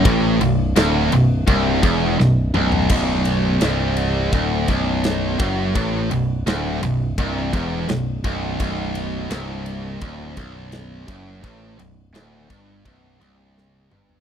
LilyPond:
<<
  \new Staff \with { instrumentName = "Distorted electric guitar" } { \clef bass \time 4/4 \key b \minor \tempo 4 = 84 a,8 b,,8 d,8 b,,8 c,8 e,8 b,,8 b,,8 | b,,4 c,4 d,8 b,,4 fis,8 | a,8 b,,8 d,8 b,,8 c,8 e,8 b,,8 b,,8 | b,,4 c,4 d,8 b,,4 fis,8 |
a,8 b,,8 d,8 g,8 b,,8 c,4 g,8 | }
  \new Staff \with { instrumentName = "Picked electric bass" } { \clef bass \time 4/4 \key b \minor a,,8 b,,,8 d,,8 b,,,8 c,,8 e,,8 b,,,8 b,,,8 | b,,,4 c,,4 d,,8 b,,,4 fis,,8 | a,,8 b,,,8 d,,8 b,,,8 c,,8 e,,8 b,,,8 b,,,8 | b,,,4 c,,4 d,,8 b,,,4 fis,,8 |
a,,8 b,,,8 d,,8 g,,8 b,,,8 c,,4 g,,8 | }
  \new DrumStaff \with { instrumentName = "Drums" } \drummode { \time 4/4 <bd cymr>8 cymr8 <cymr sn>8 cymr8 <bd cymr>8 <bd cymr>8 sn8 toml16 tomfh16 | <cymc bd>8 cymr8 <cymr sn>8 cymr8 <bd cymr>8 <bd cymr>8 <cymr sn>8 <bd cymr>8 | <bd cymr>8 cymr8 <cymr sn>8 cymr8 <bd cymr>8 <bd cymr>8 <cymr sn>8 <bd cymr>8 | <bd cymr>8 cymr8 <cymr sn>8 cymr8 <bd cymr>8 <bd cymr>8 <cymr sn>8 <bd cymr>8 |
<bd cymr>8 cymr8 <cymr sn>8 <bd cymr>8 <bd cymr>8 cymr8 sn8 toml16 tomfh16 | }
>>